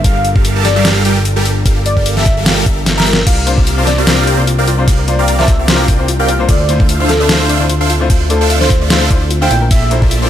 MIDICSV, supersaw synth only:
0, 0, Header, 1, 2, 480
1, 0, Start_track
1, 0, Tempo, 402685
1, 54, Time_signature, 4, 2, 24, 8
1, 12274, End_track
2, 0, Start_track
2, 0, Title_t, "Supersaw synth"
2, 0, Program_c, 0, 81
2, 53, Note_on_c, 0, 69, 78
2, 54, Note_on_c, 0, 55, 87
2, 54, Note_on_c, 0, 67, 78
2, 54, Note_on_c, 0, 70, 78
2, 54, Note_on_c, 0, 77, 95
2, 197, Note_off_c, 0, 55, 0
2, 197, Note_off_c, 0, 67, 0
2, 197, Note_off_c, 0, 69, 0
2, 197, Note_off_c, 0, 70, 0
2, 197, Note_off_c, 0, 77, 0
2, 424, Note_on_c, 0, 55, 85
2, 424, Note_on_c, 0, 67, 76
2, 424, Note_on_c, 0, 69, 76
2, 424, Note_on_c, 0, 70, 75
2, 424, Note_on_c, 0, 77, 93
2, 633, Note_off_c, 0, 55, 0
2, 633, Note_off_c, 0, 67, 0
2, 633, Note_off_c, 0, 69, 0
2, 633, Note_off_c, 0, 70, 0
2, 633, Note_off_c, 0, 77, 0
2, 663, Note_on_c, 0, 69, 88
2, 663, Note_on_c, 0, 81, 107
2, 664, Note_on_c, 0, 55, 99
2, 664, Note_on_c, 0, 67, 89
2, 664, Note_on_c, 0, 70, 90
2, 787, Note_off_c, 0, 55, 0
2, 787, Note_off_c, 0, 67, 0
2, 787, Note_off_c, 0, 69, 0
2, 787, Note_off_c, 0, 70, 0
2, 787, Note_off_c, 0, 81, 0
2, 905, Note_on_c, 0, 55, 89
2, 905, Note_on_c, 0, 67, 81
2, 905, Note_on_c, 0, 69, 83
2, 905, Note_on_c, 0, 77, 101
2, 906, Note_on_c, 0, 70, 84
2, 1227, Note_off_c, 0, 67, 0
2, 1227, Note_off_c, 0, 69, 0
2, 1228, Note_off_c, 0, 55, 0
2, 1228, Note_off_c, 0, 70, 0
2, 1228, Note_off_c, 0, 77, 0
2, 1254, Note_on_c, 0, 55, 87
2, 1254, Note_on_c, 0, 67, 83
2, 1254, Note_on_c, 0, 69, 80
2, 1254, Note_on_c, 0, 70, 80
2, 1254, Note_on_c, 0, 79, 100
2, 1397, Note_off_c, 0, 55, 0
2, 1397, Note_off_c, 0, 67, 0
2, 1397, Note_off_c, 0, 69, 0
2, 1397, Note_off_c, 0, 70, 0
2, 1397, Note_off_c, 0, 79, 0
2, 1623, Note_on_c, 0, 55, 79
2, 1623, Note_on_c, 0, 67, 72
2, 1623, Note_on_c, 0, 69, 75
2, 1623, Note_on_c, 0, 70, 75
2, 1623, Note_on_c, 0, 79, 87
2, 1747, Note_off_c, 0, 55, 0
2, 1747, Note_off_c, 0, 67, 0
2, 1747, Note_off_c, 0, 69, 0
2, 1747, Note_off_c, 0, 70, 0
2, 1747, Note_off_c, 0, 79, 0
2, 1973, Note_on_c, 0, 55, 83
2, 1973, Note_on_c, 0, 67, 75
2, 1973, Note_on_c, 0, 69, 74
2, 1973, Note_on_c, 0, 70, 76
2, 1974, Note_on_c, 0, 77, 96
2, 2117, Note_off_c, 0, 55, 0
2, 2117, Note_off_c, 0, 67, 0
2, 2117, Note_off_c, 0, 69, 0
2, 2117, Note_off_c, 0, 70, 0
2, 2117, Note_off_c, 0, 77, 0
2, 2344, Note_on_c, 0, 67, 77
2, 2344, Note_on_c, 0, 69, 73
2, 2344, Note_on_c, 0, 70, 75
2, 2344, Note_on_c, 0, 77, 89
2, 2345, Note_on_c, 0, 55, 81
2, 2553, Note_off_c, 0, 55, 0
2, 2553, Note_off_c, 0, 67, 0
2, 2553, Note_off_c, 0, 69, 0
2, 2553, Note_off_c, 0, 70, 0
2, 2553, Note_off_c, 0, 77, 0
2, 2584, Note_on_c, 0, 69, 90
2, 2584, Note_on_c, 0, 81, 110
2, 2585, Note_on_c, 0, 55, 102
2, 2585, Note_on_c, 0, 67, 89
2, 2585, Note_on_c, 0, 70, 94
2, 2708, Note_off_c, 0, 55, 0
2, 2708, Note_off_c, 0, 67, 0
2, 2708, Note_off_c, 0, 69, 0
2, 2708, Note_off_c, 0, 70, 0
2, 2708, Note_off_c, 0, 81, 0
2, 2825, Note_on_c, 0, 55, 91
2, 2825, Note_on_c, 0, 67, 84
2, 2825, Note_on_c, 0, 69, 81
2, 2825, Note_on_c, 0, 70, 82
2, 2825, Note_on_c, 0, 77, 100
2, 3147, Note_off_c, 0, 55, 0
2, 3147, Note_off_c, 0, 69, 0
2, 3147, Note_off_c, 0, 70, 0
2, 3147, Note_off_c, 0, 77, 0
2, 3148, Note_off_c, 0, 67, 0
2, 3172, Note_on_c, 0, 70, 69
2, 3173, Note_on_c, 0, 55, 76
2, 3173, Note_on_c, 0, 67, 69
2, 3173, Note_on_c, 0, 69, 68
2, 3173, Note_on_c, 0, 76, 82
2, 3316, Note_off_c, 0, 55, 0
2, 3316, Note_off_c, 0, 67, 0
2, 3316, Note_off_c, 0, 69, 0
2, 3316, Note_off_c, 0, 70, 0
2, 3316, Note_off_c, 0, 76, 0
2, 3544, Note_on_c, 0, 55, 76
2, 3544, Note_on_c, 0, 67, 75
2, 3544, Note_on_c, 0, 69, 74
2, 3544, Note_on_c, 0, 70, 74
2, 3544, Note_on_c, 0, 76, 86
2, 3667, Note_off_c, 0, 69, 0
2, 3667, Note_off_c, 0, 70, 0
2, 3667, Note_off_c, 0, 76, 0
2, 3668, Note_off_c, 0, 55, 0
2, 3668, Note_off_c, 0, 67, 0
2, 3891, Note_on_c, 0, 60, 87
2, 3891, Note_on_c, 0, 67, 75
2, 3891, Note_on_c, 0, 74, 78
2, 3891, Note_on_c, 0, 77, 89
2, 3892, Note_on_c, 0, 70, 76
2, 4035, Note_off_c, 0, 60, 0
2, 4036, Note_off_c, 0, 67, 0
2, 4036, Note_off_c, 0, 70, 0
2, 4036, Note_off_c, 0, 74, 0
2, 4036, Note_off_c, 0, 77, 0
2, 4264, Note_on_c, 0, 60, 79
2, 4264, Note_on_c, 0, 67, 76
2, 4264, Note_on_c, 0, 70, 78
2, 4264, Note_on_c, 0, 74, 76
2, 4264, Note_on_c, 0, 77, 90
2, 4473, Note_off_c, 0, 60, 0
2, 4473, Note_off_c, 0, 67, 0
2, 4473, Note_off_c, 0, 70, 0
2, 4473, Note_off_c, 0, 74, 0
2, 4473, Note_off_c, 0, 77, 0
2, 4503, Note_on_c, 0, 60, 101
2, 4503, Note_on_c, 0, 67, 94
2, 4503, Note_on_c, 0, 70, 91
2, 4503, Note_on_c, 0, 74, 89
2, 4503, Note_on_c, 0, 81, 107
2, 4627, Note_off_c, 0, 60, 0
2, 4627, Note_off_c, 0, 67, 0
2, 4627, Note_off_c, 0, 70, 0
2, 4627, Note_off_c, 0, 74, 0
2, 4627, Note_off_c, 0, 81, 0
2, 4744, Note_on_c, 0, 70, 83
2, 4744, Note_on_c, 0, 74, 83
2, 4745, Note_on_c, 0, 60, 92
2, 4745, Note_on_c, 0, 67, 84
2, 4745, Note_on_c, 0, 77, 99
2, 5067, Note_off_c, 0, 60, 0
2, 5067, Note_off_c, 0, 67, 0
2, 5067, Note_off_c, 0, 70, 0
2, 5067, Note_off_c, 0, 74, 0
2, 5067, Note_off_c, 0, 77, 0
2, 5093, Note_on_c, 0, 60, 87
2, 5093, Note_on_c, 0, 67, 82
2, 5093, Note_on_c, 0, 70, 78
2, 5093, Note_on_c, 0, 74, 82
2, 5094, Note_on_c, 0, 79, 95
2, 5237, Note_off_c, 0, 60, 0
2, 5237, Note_off_c, 0, 67, 0
2, 5237, Note_off_c, 0, 70, 0
2, 5237, Note_off_c, 0, 74, 0
2, 5237, Note_off_c, 0, 79, 0
2, 5464, Note_on_c, 0, 74, 74
2, 5464, Note_on_c, 0, 79, 86
2, 5465, Note_on_c, 0, 60, 82
2, 5465, Note_on_c, 0, 67, 75
2, 5465, Note_on_c, 0, 70, 74
2, 5588, Note_off_c, 0, 60, 0
2, 5588, Note_off_c, 0, 67, 0
2, 5588, Note_off_c, 0, 70, 0
2, 5588, Note_off_c, 0, 74, 0
2, 5588, Note_off_c, 0, 79, 0
2, 5812, Note_on_c, 0, 60, 86
2, 5812, Note_on_c, 0, 67, 77
2, 5812, Note_on_c, 0, 70, 79
2, 5812, Note_on_c, 0, 74, 75
2, 5812, Note_on_c, 0, 77, 95
2, 5956, Note_off_c, 0, 60, 0
2, 5956, Note_off_c, 0, 67, 0
2, 5956, Note_off_c, 0, 70, 0
2, 5956, Note_off_c, 0, 74, 0
2, 5956, Note_off_c, 0, 77, 0
2, 6184, Note_on_c, 0, 60, 80
2, 6184, Note_on_c, 0, 67, 73
2, 6184, Note_on_c, 0, 70, 74
2, 6184, Note_on_c, 0, 74, 77
2, 6184, Note_on_c, 0, 77, 92
2, 6393, Note_off_c, 0, 60, 0
2, 6393, Note_off_c, 0, 67, 0
2, 6393, Note_off_c, 0, 70, 0
2, 6393, Note_off_c, 0, 74, 0
2, 6393, Note_off_c, 0, 77, 0
2, 6423, Note_on_c, 0, 60, 99
2, 6423, Note_on_c, 0, 81, 108
2, 6424, Note_on_c, 0, 67, 92
2, 6424, Note_on_c, 0, 70, 90
2, 6424, Note_on_c, 0, 74, 90
2, 6547, Note_off_c, 0, 60, 0
2, 6547, Note_off_c, 0, 67, 0
2, 6547, Note_off_c, 0, 70, 0
2, 6547, Note_off_c, 0, 74, 0
2, 6547, Note_off_c, 0, 81, 0
2, 6663, Note_on_c, 0, 67, 85
2, 6663, Note_on_c, 0, 70, 82
2, 6663, Note_on_c, 0, 74, 81
2, 6663, Note_on_c, 0, 77, 105
2, 6664, Note_on_c, 0, 60, 91
2, 6986, Note_off_c, 0, 74, 0
2, 6987, Note_off_c, 0, 60, 0
2, 6987, Note_off_c, 0, 67, 0
2, 6987, Note_off_c, 0, 70, 0
2, 6987, Note_off_c, 0, 77, 0
2, 7012, Note_on_c, 0, 60, 87
2, 7012, Note_on_c, 0, 67, 83
2, 7012, Note_on_c, 0, 70, 79
2, 7012, Note_on_c, 0, 74, 82
2, 7012, Note_on_c, 0, 79, 96
2, 7156, Note_off_c, 0, 60, 0
2, 7156, Note_off_c, 0, 67, 0
2, 7156, Note_off_c, 0, 70, 0
2, 7156, Note_off_c, 0, 74, 0
2, 7156, Note_off_c, 0, 79, 0
2, 7382, Note_on_c, 0, 60, 82
2, 7382, Note_on_c, 0, 67, 73
2, 7383, Note_on_c, 0, 70, 73
2, 7383, Note_on_c, 0, 74, 75
2, 7383, Note_on_c, 0, 79, 90
2, 7507, Note_off_c, 0, 60, 0
2, 7507, Note_off_c, 0, 67, 0
2, 7507, Note_off_c, 0, 70, 0
2, 7507, Note_off_c, 0, 74, 0
2, 7507, Note_off_c, 0, 79, 0
2, 7731, Note_on_c, 0, 62, 85
2, 7731, Note_on_c, 0, 76, 75
2, 7732, Note_on_c, 0, 69, 77
2, 7732, Note_on_c, 0, 72, 76
2, 7732, Note_on_c, 0, 77, 96
2, 7876, Note_off_c, 0, 62, 0
2, 7876, Note_off_c, 0, 69, 0
2, 7876, Note_off_c, 0, 72, 0
2, 7876, Note_off_c, 0, 76, 0
2, 7876, Note_off_c, 0, 77, 0
2, 8103, Note_on_c, 0, 62, 84
2, 8104, Note_on_c, 0, 69, 78
2, 8104, Note_on_c, 0, 72, 79
2, 8104, Note_on_c, 0, 76, 75
2, 8104, Note_on_c, 0, 77, 95
2, 8312, Note_off_c, 0, 62, 0
2, 8313, Note_off_c, 0, 69, 0
2, 8313, Note_off_c, 0, 72, 0
2, 8313, Note_off_c, 0, 76, 0
2, 8313, Note_off_c, 0, 77, 0
2, 8342, Note_on_c, 0, 69, 94
2, 8343, Note_on_c, 0, 62, 94
2, 8343, Note_on_c, 0, 72, 88
2, 8343, Note_on_c, 0, 76, 88
2, 8343, Note_on_c, 0, 77, 109
2, 8467, Note_off_c, 0, 62, 0
2, 8467, Note_off_c, 0, 69, 0
2, 8467, Note_off_c, 0, 72, 0
2, 8467, Note_off_c, 0, 76, 0
2, 8467, Note_off_c, 0, 77, 0
2, 8583, Note_on_c, 0, 72, 82
2, 8583, Note_on_c, 0, 77, 98
2, 8584, Note_on_c, 0, 62, 88
2, 8584, Note_on_c, 0, 69, 82
2, 8584, Note_on_c, 0, 76, 85
2, 8907, Note_off_c, 0, 62, 0
2, 8907, Note_off_c, 0, 69, 0
2, 8907, Note_off_c, 0, 72, 0
2, 8907, Note_off_c, 0, 76, 0
2, 8907, Note_off_c, 0, 77, 0
2, 8932, Note_on_c, 0, 62, 88
2, 8932, Note_on_c, 0, 69, 83
2, 8932, Note_on_c, 0, 72, 81
2, 8932, Note_on_c, 0, 76, 82
2, 8932, Note_on_c, 0, 77, 98
2, 9076, Note_off_c, 0, 62, 0
2, 9076, Note_off_c, 0, 69, 0
2, 9076, Note_off_c, 0, 72, 0
2, 9076, Note_off_c, 0, 76, 0
2, 9076, Note_off_c, 0, 77, 0
2, 9304, Note_on_c, 0, 69, 75
2, 9304, Note_on_c, 0, 72, 74
2, 9305, Note_on_c, 0, 62, 77
2, 9305, Note_on_c, 0, 76, 71
2, 9305, Note_on_c, 0, 77, 88
2, 9428, Note_off_c, 0, 62, 0
2, 9428, Note_off_c, 0, 69, 0
2, 9428, Note_off_c, 0, 72, 0
2, 9428, Note_off_c, 0, 76, 0
2, 9428, Note_off_c, 0, 77, 0
2, 9654, Note_on_c, 0, 62, 82
2, 9654, Note_on_c, 0, 72, 78
2, 9654, Note_on_c, 0, 77, 94
2, 9655, Note_on_c, 0, 69, 80
2, 9655, Note_on_c, 0, 76, 78
2, 9797, Note_off_c, 0, 62, 0
2, 9797, Note_off_c, 0, 69, 0
2, 9797, Note_off_c, 0, 72, 0
2, 9797, Note_off_c, 0, 76, 0
2, 9797, Note_off_c, 0, 77, 0
2, 10023, Note_on_c, 0, 69, 78
2, 10024, Note_on_c, 0, 62, 83
2, 10024, Note_on_c, 0, 72, 74
2, 10024, Note_on_c, 0, 76, 76
2, 10024, Note_on_c, 0, 77, 92
2, 10232, Note_off_c, 0, 62, 0
2, 10232, Note_off_c, 0, 69, 0
2, 10232, Note_off_c, 0, 76, 0
2, 10233, Note_off_c, 0, 72, 0
2, 10233, Note_off_c, 0, 77, 0
2, 10263, Note_on_c, 0, 62, 94
2, 10263, Note_on_c, 0, 69, 94
2, 10263, Note_on_c, 0, 72, 91
2, 10263, Note_on_c, 0, 76, 90
2, 10263, Note_on_c, 0, 77, 108
2, 10387, Note_off_c, 0, 62, 0
2, 10387, Note_off_c, 0, 69, 0
2, 10387, Note_off_c, 0, 72, 0
2, 10387, Note_off_c, 0, 76, 0
2, 10387, Note_off_c, 0, 77, 0
2, 10503, Note_on_c, 0, 69, 87
2, 10503, Note_on_c, 0, 76, 82
2, 10503, Note_on_c, 0, 77, 103
2, 10504, Note_on_c, 0, 62, 88
2, 10504, Note_on_c, 0, 72, 84
2, 10826, Note_off_c, 0, 69, 0
2, 10826, Note_off_c, 0, 76, 0
2, 10826, Note_off_c, 0, 77, 0
2, 10827, Note_off_c, 0, 62, 0
2, 10827, Note_off_c, 0, 72, 0
2, 11224, Note_on_c, 0, 62, 78
2, 11224, Note_on_c, 0, 69, 74
2, 11224, Note_on_c, 0, 72, 73
2, 11224, Note_on_c, 0, 77, 85
2, 11225, Note_on_c, 0, 76, 71
2, 11320, Note_off_c, 0, 62, 0
2, 11320, Note_off_c, 0, 69, 0
2, 11320, Note_off_c, 0, 72, 0
2, 11320, Note_off_c, 0, 76, 0
2, 11320, Note_off_c, 0, 77, 0
2, 11573, Note_on_c, 0, 58, 86
2, 11573, Note_on_c, 0, 65, 76
2, 11573, Note_on_c, 0, 69, 77
2, 11573, Note_on_c, 0, 72, 79
2, 11573, Note_on_c, 0, 74, 76
2, 11573, Note_on_c, 0, 76, 89
2, 11716, Note_off_c, 0, 58, 0
2, 11716, Note_off_c, 0, 72, 0
2, 11716, Note_off_c, 0, 74, 0
2, 11716, Note_off_c, 0, 76, 0
2, 11717, Note_off_c, 0, 65, 0
2, 11717, Note_off_c, 0, 69, 0
2, 11943, Note_on_c, 0, 69, 75
2, 11944, Note_on_c, 0, 58, 82
2, 11944, Note_on_c, 0, 65, 73
2, 11944, Note_on_c, 0, 72, 74
2, 11944, Note_on_c, 0, 74, 74
2, 11944, Note_on_c, 0, 76, 91
2, 12152, Note_off_c, 0, 69, 0
2, 12153, Note_off_c, 0, 58, 0
2, 12153, Note_off_c, 0, 65, 0
2, 12153, Note_off_c, 0, 72, 0
2, 12153, Note_off_c, 0, 74, 0
2, 12153, Note_off_c, 0, 76, 0
2, 12184, Note_on_c, 0, 58, 94
2, 12184, Note_on_c, 0, 65, 88
2, 12184, Note_on_c, 0, 69, 89
2, 12184, Note_on_c, 0, 72, 90
2, 12184, Note_on_c, 0, 74, 90
2, 12184, Note_on_c, 0, 79, 108
2, 12274, Note_off_c, 0, 58, 0
2, 12274, Note_off_c, 0, 65, 0
2, 12274, Note_off_c, 0, 69, 0
2, 12274, Note_off_c, 0, 72, 0
2, 12274, Note_off_c, 0, 74, 0
2, 12274, Note_off_c, 0, 79, 0
2, 12274, End_track
0, 0, End_of_file